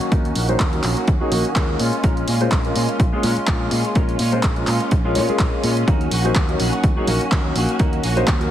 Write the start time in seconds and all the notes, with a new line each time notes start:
Already playing: D#3 A#3 C#4 F#4
0.01 closed hi-hat
0.11 D#2 D#3 F#3 A#3 C#4 D#4 F#4 A#4, kick, closed hi-hat
0.25 closed hi-hat
0.35 A#1 D#3 A#3 C#4 F#4, open hi-hat
0.48 F#3 A#3 C#4 D#4 C5, closed hi-hat
0.60 D#2 A#3 C#4 F#4, kick, clap, closed hi-hat
0.72 F#3 A#3 C#4 D#4 A#4, closed hi-hat
0.83 A#1 D#3 A#3 C#4 F#4, clap, open hi-hat
0.97 A#3 C#4 F#4, closed hi-hat
1.08 D#2, kick, closed hi-hat
1.20 F#3 A#3 C#4 D#4 F#4 G#4, muted fingered electric bass stroke
1.31 A#1 D#3 F#3 A#3 C#4 D#4 F#4 A#4, open hi-hat
1.45 closed hi-hat
1.55 D#2 D#3 G#3 A#3 C#4 F4 F#4 A#4, kick, clap, closed hi-hat
1.79 A#2 G#3 C#4 F4, open hi-hat
1.93 closed hi-hat
2.03 A#1 G#3 A#3 C#4 F4 A#4, kick, closed hi-hat
2.17 closed hi-hat
2.27 A#2 G#3 C#4 F4, open hi-hat
2.40 G#3 A#3 C#4 F4 C5, closed hi-hat
2.52 A#1 G#3 C#4 F4, kick, clap, closed hi-hat
2.65 G#3 A#3 C#4 F4 A#4, closed hi-hat
2.75 A#2 G#3 C#4 F4, open hi-hat
2.88 C#4 F4, closed hi-hat
3.00 A#1, kick, closed hi-hat
3.12 G#3 A#3 C#4 F4 G#4
3.23 A#2 G#3 A#3 C#4 F4 A#4, open hi-hat
3.37 muted fingered electric bass stroke, closed hi-hat
3.47 A#1 G#3 A#3 C#4 F4 A#4, kick, clap, closed hi-hat
3.71 A#2 G#3 C#4 F4, open hi-hat
3.85 closed hi-hat
3.95 A#1 G#3 A#3 C#4 F4 A#4, kick, closed hi-hat
4.09 closed hi-hat
4.19 A#2 G#3 C#4 F4, open hi-hat
4.32 G#3 A#3 C#4 F4 C5, closed hi-hat
4.43 A#1 G#3, kick, clap, closed hi-hat
4.56 G#3 A#3 C#4 F4 A#4, closed hi-hat
4.67 A#2 G#3 C#4 F4, clap, open hi-hat
4.80 C#4 F4, closed hi-hat
4.91 A#1, kick, closed hi-hat
5.04 G#3 A#3 C#4 F4 G#4
5.15 A#2 G#3 A#3 C#4 F4 C#5, open hi-hat
5.28 G#3 A#3 C#4 F4 G#4, muted fingered electric bass stroke, closed hi-hat
5.39 A#1 F4, kick, clap, closed hi-hat
5.63 A#2 G#3 C#4 F4, open hi-hat
5.77 closed hi-hat
5.87 D#2 F#3 A#3 C#4 D#4 F#4 A#4, kick, closed hi-hat
6.01 closed hi-hat
6.11 A#1 A#3 C#4 F#4, open hi-hat
6.24 F#3 A#3 C#4 D#4 C5
6.35 D#2 F#4, kick, clap, closed hi-hat
6.48 F#3 A#3 C#4 D#4 A#4, closed hi-hat
6.59 A#1 A#3 C#4 F#4, open hi-hat
6.72 C#4 F#4, closed hi-hat
6.84 D#2, kick, closed hi-hat
6.96 F#3 A#3 C#4 D#4 F#4 G#4, muted fingered electric bass stroke
7.07 A#1 F#3 A#3 C#4 D#4 F#4 A#4, open hi-hat
7.21 closed hi-hat
7.31 D#2 F#3 A#3 C#4 D#4 A#4, kick, clap, closed hi-hat
7.55 A#1 A#3 C#4 F#4, open hi-hat
7.69 closed hi-hat
7.79 D#2 F#3 A#3 C#4 D#4 F#4 A#4, kick, closed hi-hat
7.93 closed hi-hat
8.03 A#1 A#3 C#4 F#4, open hi-hat
8.16 F#3 A#3 C#4 D#4 C5, closed hi-hat
8.27 D#2 A#3 C#4 F#4, kick, clap, closed hi-hat
8.40 F#3 A#3 C#4 D#4 A#4, closed hi-hat